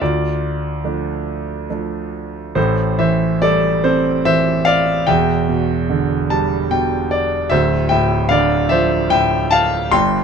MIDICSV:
0, 0, Header, 1, 2, 480
1, 0, Start_track
1, 0, Key_signature, 0, "minor"
1, 0, Tempo, 848656
1, 7, Time_signature, 3, 2, 24, 8
1, 2407, Tempo, 819672
1, 3847, Tempo, 803213
1, 5953, End_track
2, 0, Start_track
2, 0, Title_t, "Grand piano"
2, 0, Program_c, 0, 0
2, 0, Control_c, 0, 64, 127
2, 7, Note_on_c, 0, 38, 57
2, 9, Note_on_c, 0, 74, 60
2, 10, Note_on_c, 0, 65, 43
2, 13, Control_c, 0, 64, 0
2, 128, Control_c, 0, 64, 127
2, 476, Note_on_c, 0, 53, 32
2, 478, Note_on_c, 0, 57, 31
2, 481, Note_on_c, 0, 62, 40
2, 942, Note_off_c, 0, 74, 0
2, 943, Note_off_c, 0, 65, 0
2, 948, Note_off_c, 0, 53, 0
2, 949, Note_off_c, 0, 57, 0
2, 950, Note_off_c, 0, 62, 0
2, 960, Note_on_c, 0, 53, 31
2, 962, Note_on_c, 0, 57, 28
2, 963, Note_on_c, 0, 62, 30
2, 1430, Note_off_c, 0, 38, 0
2, 1436, Note_off_c, 0, 53, 0
2, 1437, Note_off_c, 0, 57, 0
2, 1438, Note_off_c, 0, 62, 0
2, 1444, Note_on_c, 0, 33, 53
2, 1444, Note_on_c, 0, 72, 63
2, 1446, Note_on_c, 0, 45, 56
2, 1454, Note_on_c, 0, 69, 50
2, 1461, Control_c, 0, 64, 0
2, 1548, Control_c, 0, 64, 127
2, 1678, Note_off_c, 0, 69, 0
2, 1688, Note_off_c, 0, 72, 0
2, 1688, Note_on_c, 0, 52, 42
2, 1689, Note_on_c, 0, 76, 65
2, 1697, Note_on_c, 0, 72, 52
2, 1920, Note_off_c, 0, 72, 0
2, 1933, Note_on_c, 0, 55, 48
2, 1933, Note_on_c, 0, 74, 80
2, 1939, Note_on_c, 0, 69, 61
2, 1941, Note_off_c, 0, 76, 0
2, 2159, Note_off_c, 0, 69, 0
2, 2171, Note_on_c, 0, 72, 68
2, 2173, Note_on_c, 0, 60, 50
2, 2178, Note_on_c, 0, 69, 54
2, 2179, Note_off_c, 0, 74, 0
2, 2391, Note_off_c, 0, 69, 0
2, 2397, Note_off_c, 0, 52, 0
2, 2402, Note_off_c, 0, 72, 0
2, 2405, Note_on_c, 0, 52, 45
2, 2406, Note_on_c, 0, 76, 84
2, 2411, Note_on_c, 0, 72, 68
2, 2628, Note_off_c, 0, 76, 0
2, 2630, Note_off_c, 0, 72, 0
2, 2638, Note_on_c, 0, 77, 89
2, 2645, Note_on_c, 0, 74, 73
2, 2858, Note_off_c, 0, 33, 0
2, 2859, Note_off_c, 0, 45, 0
2, 2861, Note_off_c, 0, 55, 0
2, 2864, Note_off_c, 0, 60, 0
2, 2866, Note_off_c, 0, 77, 0
2, 2870, Note_off_c, 0, 74, 0
2, 2872, Note_off_c, 0, 52, 0
2, 2882, Note_on_c, 0, 79, 78
2, 2887, Note_on_c, 0, 76, 62
2, 2888, Note_on_c, 0, 28, 56
2, 2888, Note_on_c, 0, 40, 63
2, 2894, Control_c, 0, 64, 0
2, 3002, Control_c, 0, 64, 127
2, 3128, Note_on_c, 0, 47, 46
2, 3368, Note_on_c, 0, 50, 50
2, 3582, Note_off_c, 0, 79, 0
2, 3585, Note_off_c, 0, 76, 0
2, 3605, Note_on_c, 0, 55, 53
2, 3606, Note_on_c, 0, 81, 65
2, 3828, Note_off_c, 0, 81, 0
2, 3834, Note_off_c, 0, 47, 0
2, 3843, Note_on_c, 0, 47, 46
2, 3844, Note_on_c, 0, 79, 64
2, 4069, Note_off_c, 0, 79, 0
2, 4083, Note_on_c, 0, 74, 70
2, 4300, Note_off_c, 0, 50, 0
2, 4301, Note_off_c, 0, 28, 0
2, 4301, Note_off_c, 0, 40, 0
2, 4301, Note_off_c, 0, 55, 0
2, 4306, Note_off_c, 0, 74, 0
2, 4309, Note_off_c, 0, 47, 0
2, 4314, Note_on_c, 0, 76, 78
2, 4322, Note_on_c, 0, 38, 63
2, 4323, Note_on_c, 0, 26, 64
2, 4324, Note_on_c, 0, 72, 58
2, 4333, Control_c, 0, 64, 0
2, 4443, Control_c, 0, 64, 127
2, 4545, Note_off_c, 0, 72, 0
2, 4549, Note_on_c, 0, 79, 79
2, 4552, Note_off_c, 0, 76, 0
2, 4561, Note_on_c, 0, 76, 65
2, 4563, Note_on_c, 0, 45, 52
2, 4784, Note_off_c, 0, 76, 0
2, 4787, Note_on_c, 0, 77, 83
2, 4798, Note_on_c, 0, 50, 56
2, 4802, Note_off_c, 0, 79, 0
2, 4802, Note_on_c, 0, 74, 70
2, 5026, Note_off_c, 0, 74, 0
2, 5028, Note_on_c, 0, 76, 78
2, 5036, Note_on_c, 0, 53, 59
2, 5042, Note_on_c, 0, 72, 64
2, 5043, Note_off_c, 0, 77, 0
2, 5263, Note_off_c, 0, 45, 0
2, 5267, Note_off_c, 0, 72, 0
2, 5272, Note_on_c, 0, 45, 48
2, 5274, Note_on_c, 0, 79, 91
2, 5277, Note_off_c, 0, 76, 0
2, 5286, Note_on_c, 0, 76, 68
2, 5510, Note_off_c, 0, 76, 0
2, 5515, Note_on_c, 0, 81, 86
2, 5525, Note_on_c, 0, 77, 72
2, 5528, Note_off_c, 0, 79, 0
2, 5740, Note_off_c, 0, 38, 0
2, 5740, Note_off_c, 0, 50, 0
2, 5741, Note_off_c, 0, 26, 0
2, 5741, Note_off_c, 0, 53, 0
2, 5745, Note_off_c, 0, 45, 0
2, 5749, Note_off_c, 0, 77, 0
2, 5759, Note_on_c, 0, 84, 89
2, 5761, Note_on_c, 0, 43, 61
2, 5762, Note_on_c, 0, 31, 58
2, 5768, Note_off_c, 0, 81, 0
2, 5769, Note_on_c, 0, 79, 62
2, 5773, Control_c, 0, 64, 0
2, 5894, Control_c, 0, 64, 127
2, 5953, Note_off_c, 0, 31, 0
2, 5953, Note_off_c, 0, 43, 0
2, 5953, Note_off_c, 0, 79, 0
2, 5953, Note_off_c, 0, 84, 0
2, 5953, End_track
0, 0, End_of_file